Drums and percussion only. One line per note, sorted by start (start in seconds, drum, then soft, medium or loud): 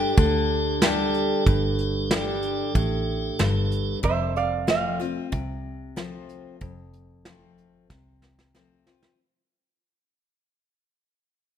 0.17 kick loud
0.17 closed hi-hat medium
0.82 snare loud
0.82 closed hi-hat medium
1.14 closed hi-hat medium
1.46 kick loud
1.46 closed hi-hat medium
1.78 closed hi-hat medium
2.11 snare loud
2.11 closed hi-hat medium
2.42 closed hi-hat medium
2.75 kick loud
2.75 closed hi-hat medium
3.39 snare loud
3.39 closed hi-hat medium
3.72 closed hi-hat medium
4.03 kick medium
4.03 closed hi-hat medium
4.36 closed hi-hat medium
4.68 snare loud
4.68 closed hi-hat medium
5.01 closed hi-hat medium
5.33 kick loud
5.33 closed hi-hat medium
5.97 snare loud
5.97 closed hi-hat medium
6.29 closed hi-hat medium
6.61 kick loud
6.61 closed hi-hat medium
6.93 closed hi-hat medium
7.25 snare loud
7.25 closed hi-hat medium
7.58 closed hi-hat medium
7.90 kick loud
7.90 snare medium
8.22 snare medium
8.39 snare medium
8.55 snare medium
8.87 snare medium
9.02 snare medium